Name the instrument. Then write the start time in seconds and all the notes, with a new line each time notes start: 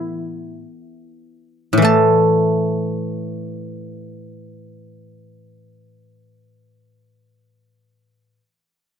guzheng
Already playing: A2 A3 B3 E4 A5
1.73 A2
1.77 E3
1.82 A3 A5